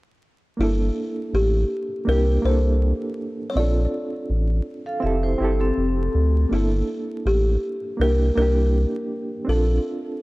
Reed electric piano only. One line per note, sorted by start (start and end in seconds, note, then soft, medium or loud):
0.57 1.87 A#3 medium
0.57 1.88 D4 medium
0.61 1.89 E4 medium
0.61 1.90 A4 medium
2.05 2.38 A#3 medium
2.05 2.39 D4 medium
2.09 2.40 E4 medium
2.09 2.41 G4 medium
2.42 3.40 A#3 medium
2.42 3.41 D4 medium
2.46 3.42 E4 medium
2.46 3.43 A4 medium
3.54 4.83 C4 medium
3.54 3.62 C#4 soft
3.54 4.85 F4 medium
3.59 4.88 D4 medium
3.59 4.86 A4 medium
5.00 5.34 C4 medium
5.00 5.35 E4 medium
5.04 5.36 G4 medium
5.04 5.37 A4 medium
5.38 6.36 C4 medium
5.38 6.37 E4 medium
5.42 6.38 G4 medium
5.42 6.39 A4 loud
6.49 7.79 A#3 medium
6.49 7.80 D4 medium
6.49 7.81 E4 medium
6.55 7.82 A4 medium
7.97 8.30 A#3 medium
7.97 8.31 D4 medium
8.01 8.32 E4 medium
8.01 8.33 G4 medium
8.36 9.33 A#3 medium
8.36 9.34 D4 medium
8.40 9.35 E4 medium
8.40 9.36 G4 medium
9.45 10.22 C4 medium
9.45 10.22 D4 medium
9.49 10.22 F4 medium
9.49 10.22 A4 medium